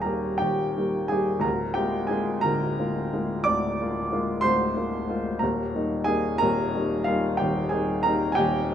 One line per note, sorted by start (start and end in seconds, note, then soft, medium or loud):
0.00 0.42 D#1 medium
0.00 0.42 D#2 medium
0.00 0.05 G3 soft
0.00 0.05 A#3 soft
0.00 1.48 F4 medium
0.00 0.06 G4 medium
0.00 1.09 G#4 medium
0.00 0.03 A#4 medium
0.00 0.38 A#4 medium
0.00 1.47 F5 medium
0.00 0.38 G5 medium
0.00 1.08 G#5 medium
0.00 0.02 A#5 medium
0.00 0.40 A#5 medium
0.05 0.38 G3 soft
0.05 0.38 A#3 soft
0.05 0.38 G4 soft
0.38 0.76 D#1 medium
0.38 0.76 D#2 medium
0.38 0.77 G4 medium
0.38 1.10 G5 medium
0.77 1.08 G3 soft
0.77 1.09 A#3 soft
0.77 1.09 G4 soft
1.08 1.42 G3 soft
1.08 1.42 A#3 soft
1.08 1.42 G4 medium
1.08 1.41 G#4 medium
1.08 1.43 G#5 medium
1.39 1.74 D2 medium
1.39 1.74 A#4 medium
1.39 1.76 A#5 medium
1.44 1.76 D1 medium
1.74 2.07 G#3 medium
1.74 2.07 A#3 soft
1.74 2.07 G4 medium
1.74 2.09 G5 medium
1.78 2.08 F4 medium
2.07 2.41 G#3 medium
2.07 2.42 A#3 medium
2.07 2.41 G#4 medium
2.07 2.43 G#5 medium
2.11 2.42 F4 medium
2.41 2.79 D1 medium
2.41 2.79 D2 medium
2.41 3.42 A#4 medium
2.41 3.45 A#5 medium
2.79 3.10 G#3 soft
2.79 3.10 A#3 soft
2.79 3.11 F4 medium
3.13 3.44 G#3 soft
3.13 3.44 A#3 soft
3.13 3.44 F4 medium
3.44 3.79 D1 medium
3.44 3.79 D2 medium
3.44 4.39 D5 medium
3.44 4.42 D6 loud
3.81 4.09 G#3 soft
3.81 4.09 A#3 soft
3.81 4.10 F4 medium
4.12 4.41 G#3 soft
4.12 4.41 A#3 medium
4.12 4.41 F4 medium
4.41 4.75 D1 medium
4.41 4.75 D2 medium
4.41 5.37 C5 medium
4.41 5.40 C6 loud
4.76 5.06 G#3 soft
4.76 5.06 A#3 soft
4.76 5.06 F4 medium
5.09 5.38 G#3 soft
5.09 5.39 A#3 soft
5.09 5.39 F4 medium
5.39 5.74 D#1 medium
5.39 5.74 D#2 medium
5.39 6.03 A#4 medium
5.39 6.06 A#5 medium
5.75 6.05 G3 soft
5.75 6.05 A#3 soft
5.75 6.05 D#4 medium
6.04 6.38 G3 medium
6.04 6.38 A#3 medium
6.04 6.39 D#4 medium
6.04 6.38 G#4 medium
6.04 6.40 G#5 loud
6.38 6.74 D#1 medium
6.38 6.74 D#2 medium
6.38 7.03 A#4 medium
6.38 7.06 A#5 loud
6.75 7.04 G3 medium
6.75 7.04 A#3 medium
6.75 7.05 D#4 medium
7.04 7.37 G3 soft
7.04 7.37 F4 medium
7.04 7.38 F5 medium
7.08 7.37 A#3 medium
7.08 7.37 D#4 medium
7.37 7.72 D#1 medium
7.37 7.72 D#2 medium
7.37 7.70 G4 medium
7.37 7.71 G5 medium
7.69 8.02 G3 soft
7.69 8.02 A#3 soft
7.69 8.02 G#4 medium
7.69 8.04 G#5 medium
7.73 8.02 D#4 medium
8.03 8.35 G3 medium
8.03 8.36 A#3 medium
8.03 8.36 D#4 medium
8.03 8.29 A#4 medium
8.03 8.31 A#5 medium
8.32 8.74 G5 loud
8.32 8.38 G#5 medium
8.36 8.71 D#1 medium
8.36 8.71 D#2 medium
8.36 8.74 G4 medium